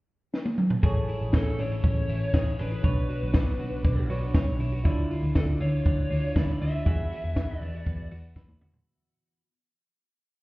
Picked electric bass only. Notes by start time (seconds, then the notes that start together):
0.83 A1
1.21 A1
1.34 A1
1.59 A1
1.84 A1
2.08 A1
2.34 A1
2.60 A1
2.84 B1
3.23 B1
3.34 B1
3.60 B1
3.84 B1
4.09 B1
4.34 B1
4.59 B1
4.85 D2
5.23 D2
5.36 D2
5.61 D2
5.86 D2
6.10 D2
6.36 D2
6.61 D2
6.86 E2
7.24 E2
7.37 E2
7.61 E2
7.87 E2
8.11 E2
8.36 E2
8.61 E2